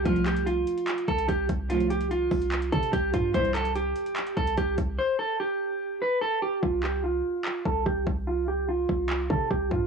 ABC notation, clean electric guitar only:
X:1
M:4/4
L:1/8
Q:1/4=146
K:Flyd
V:1 name="Clean electric guitar"
F G F3 A G z | F G F3 A G F | c A G3 A G z | c A G3 B A G |
F G F3 A G z | F G F3 A G F |]